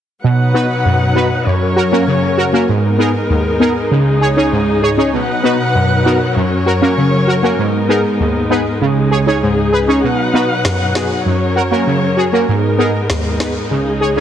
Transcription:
0.24 string section B2 F#3 D#4 B4 F#5, synth stab B2
0.54 synth stab B3 D#4 F#4 B4
0.85 synth stab F#2
1.15 synth stab B3 D#4 F#4 B4
1.46 synth stab F#2, string section F#2 F#3 C#4 A#4 C#5
1.76 synth stab F#4 A#4
1.92 synth stab A#3 C#4 F#4 A#4
2.08 synth stab C#3
2.38 synth stab F#4 A#4
2.53 synth stab A#3 C#4 F#4 A#4
2.69 synth stab G#2, string section G#2 G#3 B3 D#4 A#4
2.99 synth stab B3 D#4 G#4 A#4
3.30 synth stab D#2
3.60 synth stab B3 D#4 G#4 A#4
3.91 string section C#2 C#3 G#4, synth stab C#3
4.21 synth stab G#4 C#5
4.37 synth stab C#4 D#4 G#4 C#5
4.52 synth stab G#2
4.82 synth stab G#4 C#5
4.98 synth stab C#4 D#4 G#4 C#5
5.13 synth stab B2, string section B2 F#3 B4 F#5
5.43 synth stab B3 D#4 F#4 B4
5.75 synth stab F#2
6.05 synth stab B3 D#4 F#4 A#4
6.36 string section F#2 C#4 A#4 C#5, synth stab F#2
6.66 synth stab F#4 A#4
6.81 synth stab A#3 C#4 F#4 A#4
6.98 synth stab C#3
7.28 synth stab F#4 A#4
7.43 synth stab A#3 C#4 F#4 A#4
7.59 string section G#2 G#3 B3 D#4, synth stab G#2
7.89 synth stab B3 D#4 G#4 A#4
8.20 synth stab D#2
8.50 synth stab B3 D#4 G#4 B4
8.81 string section C#2 C#3 D#4 G#4, synth stab C#3
9.11 synth stab G#4 C#5
9.27 synth stab C#4 D#4 G#4 C#5
9.43 synth stab G#2
9.72 synth stab G#4 B4
9.88 synth stab C#4 D#4 G#4 C#5
10.03 string section B2 F#3 B4 F#5, synth stab B2
10.34 synth stab B3 D#4 F#4 B4
10.65 synth stab F#2, cross-stick, snare
10.95 synth stab B3 D#4 F#4 G#4, cross-stick, snare
11.26 synth stab F#2, string section F#2 C#4 A#4 C#5
11.56 synth stab F#4 A#4
11.71 synth stab A#3 C#4 F#4 A#4
11.87 synth stab C#3
12.17 synth stab F#4 G#4
12.33 synth stab A#3 C#4 F#4 A#4
12.48 string section G#2 G#3 B3 D#4, synth stab G#2
12.78 synth stab B3 D#4 G#4 A#4
13.10 synth stab D#2, cross-stick, snare
13.40 synth stab B3 D#4 G#4 B4, cross-stick, snare
13.71 string section C#2 C#3 G#4, synth stab C#3
14.01 synth stab G#4 C#5
14.16 synth stab C#4 D#4 G#4

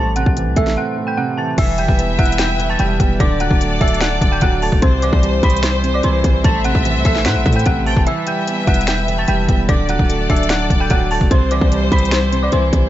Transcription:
Already playing: 808-style bass A1, grand piano A2, synth bell A5 A6
0.16 grand piano C3, synth bell F#5 F#6, closed hi-hat
0.26 808-style bass A1, kick
0.36 grand piano E3, closed hi-hat
0.47 808-style bass C2
0.56 808-style bass A1, grand piano A3, synth bell E5 E6, kick, closed hi-hat
0.67 snare
0.77 grand piano C4, synth bell F#5 F#6
0.97 grand piano A2
1.07 synth bell G5 G6
1.17 grand piano C3, synth bell F#5 F#6
1.38 grand piano E3, synth bell A5 A6
1.58 808-style bass E1, grand piano E3, string section G3 E4 B4, synth bell E5 E6, violin section E5, kick, closed hi-hat, crash
1.78 grand piano G3, synth bell G5 G6, closed hi-hat
1.88 808-style bass E1, kick
1.99 grand piano B3, closed hi-hat
2.19 808-style bass E1, grand piano E4, synth bell F#5 F#6, kick, closed hi-hat
2.26 closed hi-hat
2.32 closed hi-hat
2.38 grand piano E5, synth bell G5 G6, finger snap, snare, closed hi-hat
2.59 grand piano E3, closed hi-hat
2.70 synth bell A5 A6
2.79 808-style bass E1, grand piano G3, synth bell G5 G6, closed hi-hat
3.00 808-style bass E1, grand piano B3, kick, closed hi-hat
3.20 808-style bass D1, grand piano D3, string section F#3 D4 A4, synth bell D5 D6, violin section D5, kick, closed hi-hat
3.40 grand piano F#3, synth bell F#5 F#6, closed hi-hat
3.51 808-style bass D1, kick
3.60 grand piano A3, closed hi-hat
3.81 808-style bass D1, grand piano D4, synth bell E5 E6, kick, closed hi-hat
3.88 closed hi-hat
3.94 closed hi-hat
4.01 grand piano D5, synth bell F#5 F#6, finger snap, snare, closed hi-hat
4.21 808-style bass D1, grand piano D3, kick, closed hi-hat
4.32 synth bell G5 G6
4.41 808-style bass D1, grand piano F#3, synth bell F#5 F#6, kick, closed hi-hat
4.62 grand piano A3, synth bell A5 A6, open hi-hat
4.72 808-style bass D1, kick
4.82 808-style bass C2, grand piano C3, string section G3 E4 C5, violin section C5, synth bell C5 C6, kick, closed hi-hat
5.02 grand piano E3, synth bell D5 D6, closed hi-hat
5.13 808-style bass C2, kick
5.23 grand piano G3, closed hi-hat
5.43 808-style bass C2, grand piano C4, synth bell B5 B6, kick, closed hi-hat
5.50 closed hi-hat
5.57 closed hi-hat
5.63 grand piano C5, synth bell C5 C6, finger snap, snare, closed hi-hat
5.84 grand piano C3, closed hi-hat
5.94 synth bell D5 D6
6.03 808-style bass C2, grand piano E3, synth bell C5 C6, closed hi-hat
6.24 808-style bass C2, grand piano G3, kick, closed hi-hat
6.44 808-style bass A1, grand piano A2, string section A3, violin section E5, synth bell A5 A6, kick, closed hi-hat
6.64 grand piano C3, synth bell F#5 F#6, closed hi-hat
6.75 808-style bass A1, kick
6.85 grand piano E3, closed hi-hat
6.95 808-style bass C2
7.05 808-style bass A1, grand piano A3, synth bell E5 E6, kick, closed hi-hat
7.15 snare
7.25 808-style bass A2, grand piano C4, synth bell F#5 F#6, finger snap, snare, closed hi-hat
7.36 808-style bass A1
7.46 808-style bass A2, grand piano A2, kick, closed hi-hat
7.53 synth bell G5 G6, closed hi-hat
7.59 closed hi-hat
7.66 808-style bass A1, grand piano C3, synth bell F#5 F#6, kick, closed hi-hat
7.86 grand piano E3, violin section G5, synth bell A5 A6, open hi-hat
7.97 808-style bass E1, kick
8.07 grand piano E3, string section G3 B4, synth bell E5 E6, violin section E5, closed hi-hat
8.27 grand piano G3, synth bell G5 G6, closed hi-hat
8.47 grand piano B3, closed hi-hat
8.67 808-style bass E1, grand piano E4, synth bell F#5 F#6, kick, closed hi-hat
8.74 closed hi-hat
8.81 closed hi-hat
8.87 grand piano E5, synth bell G5 G6, finger snap, snare, closed hi-hat
9.08 grand piano E3, closed hi-hat
9.18 synth bell A5 A6
9.28 808-style bass E1, grand piano G3, synth bell G5 G6, closed hi-hat
9.49 808-style bass E1, grand piano B3, kick, closed hi-hat
9.69 808-style bass D1, grand piano D3, string section F#3 D4 A4, synth bell D5 D6, violin section D5, kick, closed hi-hat
9.89 grand piano F#3, synth bell F#5 F#6, closed hi-hat
9.99 808-style bass D1, kick
10.09 grand piano A3, closed hi-hat
10.29 808-style bass D1, grand piano D4, synth bell E5 E6, kick, closed hi-hat
10.36 closed hi-hat
10.43 closed hi-hat
10.49 grand piano D5, synth bell F#5 F#6, finger snap, snare, closed hi-hat
10.70 808-style bass D1, grand piano D3, kick, closed hi-hat
10.80 synth bell G5 G6
10.90 808-style bass D1, grand piano F#3, synth bell F#5 F#6, kick, closed hi-hat
11.11 grand piano A3, synth bell A5 A6, open hi-hat
11.21 808-style bass D1, kick
11.31 808-style bass C2, grand piano C3, string section G3 E4 C5, violin section C5, synth bell C5 C6, kick, closed hi-hat
11.51 grand piano E3, synth bell D5 D6, closed hi-hat
11.61 808-style bass C2, kick
11.72 grand piano G3, closed hi-hat
11.92 808-style bass C2, grand piano C4, synth bell B5 B6, kick, closed hi-hat
11.98 closed hi-hat
12.05 closed hi-hat
12.11 grand piano C5, synth bell C5 C6, finger snap, snare, closed hi-hat
12.32 grand piano C3, closed hi-hat
12.43 synth bell D5 D6
12.52 808-style bass C2, grand piano E3, synth bell C5 C6, closed hi-hat
12.73 808-style bass C2, grand piano G3, kick, closed hi-hat

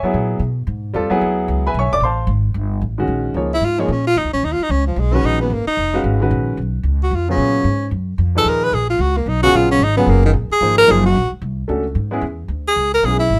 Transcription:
Already playing: grand piano C#5 E5 G#5 C#6
0.02 grand piano F#3 B3 E4 G#4, muted upright bass stroke
0.14 upright bass A#2
0.39 upright bass B2
0.67 upright bass G#2
0.94 upright bass E2, grand piano G3 C4 F4 A4
1.10 grand piano F#3 B3 E4 G#4, muted upright bass stroke
1.21 upright bass D2
1.48 upright bass C#2
1.67 grand piano B4 E5 G#5 B5
1.74 upright bass B1
1.79 upright bass G#1, grand piano C#5 E5 G#5 C#6
1.92 upright bass E1, grand piano D5 D6
2.00 upright bass A1, grand piano C5 C6
2.05 grand piano F5 A5
2.27 upright bass G#1
2.54 upright bass G1
2.81 upright bass A1
2.98 grand piano D#3 G#3 C#4 F#4
3.07 upright bass A#1
3.34 upright bass C#2, grand piano F3 A#3 D#4 G#4 C#5
3.54 tenor saxophone E4
3.61 upright bass G#2
3.65 tenor saxophone F4
3.78 grand piano F3 A#3 D#4 G#4 C#5, tenor saxophone G#3
3.88 upright bass A#2, tenor saxophone C#4
4.07 tenor saxophone F4
4.16 upright bass F2, tenor saxophone D#4
4.24 upright bass C#2
4.33 upright bass A#1, tenor saxophone C#4
4.43 upright bass D#2, tenor saxophone D#4
4.52 tenor saxophone F4
4.59 tenor saxophone D#4, muted upright bass stroke
4.69 upright bass C#2, tenor saxophone C#4
4.87 tenor saxophone F3
4.96 upright bass B1, tenor saxophone G#3
5.13 grand piano D#3 G#3 C#4 F#4 B4, tenor saxophone C#4
5.23 upright bass A#1, tenor saxophone D#4
5.41 tenor saxophone B3
5.50 upright bass G#1, tenor saxophone A#3
5.66 tenor saxophone D#4, muted upright bass stroke
5.77 upright bass F1
5.93 grand piano G#3 C#4 F#4 B4 F5
6.04 upright bass G#1
6.20 grand piano D#3 G#3 C#4 F#4 B4
6.31 upright bass A#1
6.57 upright bass B1
6.83 upright bass C#2
7.03 tenor saxophone F#4
7.11 upright bass F2
7.15 tenor saxophone F4
7.28 grand piano C#3 F#3 B3 F4 G#4, tenor saxophone C#4
7.38 upright bass A#2
7.64 upright bass G#2
7.91 upright bass F#2
8.18 upright bass F2
8.35 grand piano A#2 F3 D#4 G#4 B4, tenor saxophone A4
8.45 upright bass D#2
8.49 tenor saxophone A#4
8.64 tenor saxophone B4
8.72 upright bass A#1, tenor saxophone G#4
8.90 tenor saxophone F4
8.99 upright bass C#2, tenor saxophone F#4
9.17 tenor saxophone A#3
9.26 upright bass B1, tenor saxophone D#4
9.42 grand piano C#3 F#3 B3 F4 G#4, tenor saxophone F#4
9.53 upright bass A#1, tenor saxophone F4
9.71 tenor saxophone C#4
9.79 upright bass G#1
9.84 tenor saxophone D#4
9.96 grand piano C#3 F#3 B3 F4 G#4, tenor saxophone B3
10.07 upright bass F#1, tenor saxophone A#3
10.26 tenor saxophone D#3
10.33 upright bass A#1
10.50 tenor saxophone G#4, muted upright bass stroke
10.61 upright bass G#1, grand piano F3 A#3 D#4 G#4 C5
10.78 tenor saxophone A#4
10.88 upright bass F#1, grand piano F3 A#3 D#4 G#4 C5, tenor saxophone G#4
11.06 tenor saxophone F#4
11.16 upright bass A#1
11.32 muted upright bass stroke
11.42 upright bass C2
11.68 upright bass C#2, grand piano A3 C#4 D4 F#4 A4
11.95 upright bass G#2
12.11 grand piano G#3 B3 C#4 E4 G#4
12.21 upright bass E2
12.48 upright bass D2
12.68 tenor saxophone G#4
12.76 upright bass C#2
12.94 tenor saxophone A#4
13.03 upright bass B1, grand piano G#3 B3 C#4 E4 G#4, tenor saxophone G#4
13.19 tenor saxophone E4
13.30 upright bass G#1

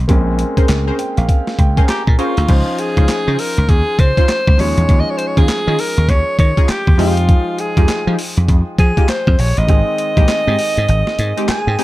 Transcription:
0.08 slap bass A#1, grand piano G#3 A#3 C4 C#4, kick, closed hi-hat
0.39 closed hi-hat
0.57 analog polysynth C#4 G#4 A#4 C5, kick, closed hi-hat
0.69 slap bass C#2, snare, clap, closed hi-hat
0.87 analog polysynth C#4 G#4 A#4 C5
0.99 grand piano G5, closed hi-hat
1.17 slap bass A#1, grand piano F5, closed hi-hat
1.29 grand piano F5, kick, closed hi-hat
1.47 snare
1.59 slap bass C#2, grand piano G5, kick, closed hi-hat
1.77 analog polysynth C#4 G#4 A#4 C5, grand piano G#5, kick, closed hi-hat
1.88 alto saxophone G4, grand piano A#5, snare, clap, closed hi-hat
2.07 slap bass A#2, kick
2.19 analog polysynth C#4 G#4 A#4 C5, alto saxophone F4, grand piano C#6, closed hi-hat
2.37 slap bass D2, closed hi-hat
2.48 slap bass C#2, grand piano F3 C#4 D#4 C5, kick, closed hi-hat, crash
2.78 alto saxophone G#4, closed hi-hat
2.97 slap bass C#2, analog polysynth C#4 D#4 F4 C5, kick, closed hi-hat
3.08 snare, clap, closed hi-hat
3.27 slap bass C#3, analog polysynth C#4 D#4 F4 C5
3.39 alto saxophone A#4, open hi-hat
3.57 slap bass C#2, closed hi-hat
3.69 slap bass D#2, alto saxophone G#4, kick, closed hi-hat
3.99 slap bass C#3, alto saxophone C5, kick, closed hi-hat
4.17 analog polysynth C#4 D#4 F4 C5, kick, closed hi-hat
4.29 snare, clap, closed hi-hat
4.47 slap bass C#2, kick
4.58 slap bass D#2, grand piano F3 G#3 C#4 D#4, alto saxophone C#5, open hi-hat
4.77 slap bass E2, closed hi-hat
4.89 slap bass D#2, kick, closed hi-hat
5.00 alto saxophone D#5
5.10 alto saxophone C#5
5.17 alto saxophone C5, closed hi-hat
5.27 alto saxophone C#5
5.37 slap bass D#2, analog polysynth C#4 D#4 F4 G#4, alto saxophone G#4, kick, closed hi-hat
5.49 muted slap bass stroke, snare, clap, closed hi-hat
5.67 slap bass D#3, analog polysynth C#4 D#4 F4 G#4
5.79 alto saxophone A#4, open hi-hat
5.97 slap bass D#2, closed hi-hat
6.09 slap bass D#2, alto saxophone C#5, kick, closed hi-hat
6.39 slap bass D#3, alto saxophone C#5, kick, closed hi-hat
6.57 analog polysynth C#4 D#4 F4 G#4, kick, closed hi-hat
6.69 alto saxophone G4, muted slap bass stroke, snare, clap, closed hi-hat
6.87 slap bass D#2, kick
6.98 slap bass F2, grand piano F3 G#3 D#4 G5, analog polysynth G#3 D#4 F4 G4, alto saxophone F4, open hi-hat
7.17 closed hi-hat
7.29 kick, closed hi-hat
7.59 alto saxophone G#4, closed hi-hat
7.77 slap bass F2, analog polysynth G#3 D#4 F4 G4, kick, closed hi-hat
7.89 muted slap bass stroke, snare, clap, closed hi-hat
8.07 slap bass F3, analog polysynth G#3 D#4 F4 G4
8.19 open hi-hat
8.37 slap bass F2, closed hi-hat
8.48 slap bass F2, kick, closed hi-hat
8.79 slap bass F3, alto saxophone G#4, kick, closed hi-hat
8.97 analog polysynth G#3 D#4 F4 G4, kick, closed hi-hat
9.08 alto saxophone C5, snare, clap, closed hi-hat
9.27 slap bass F2, kick
9.39 slap bass A#1, alto saxophone C#5, open hi-hat
9.57 slap bass A1, alto saxophone D#5, closed hi-hat
9.67 slap bass G#1, grand piano D#3 G#3 C4 G#4, kick, closed hi-hat
9.98 closed hi-hat
10.17 slap bass A#1, analog polysynth G#3 C4 D#4 G4, kick, closed hi-hat
10.28 snare, clap, closed hi-hat
10.47 slap bass G#2, analog polysynth G#3 C4 D#4 G4
10.59 open hi-hat
10.77 slap bass G#2, closed hi-hat
10.89 slap bass G#1, closed hi-hat
11.07 snare
11.19 slap bass G#2, closed hi-hat
11.37 analog polysynth G#3 C4 D#4 G4, closed hi-hat
11.48 alto saxophone G#4, grand piano G#5, muted slap bass stroke, snare, clap, closed hi-hat
11.67 slap bass G#2, grand piano G5
11.79 analog polysynth G#3 C4 D#4 G4, open hi-hat

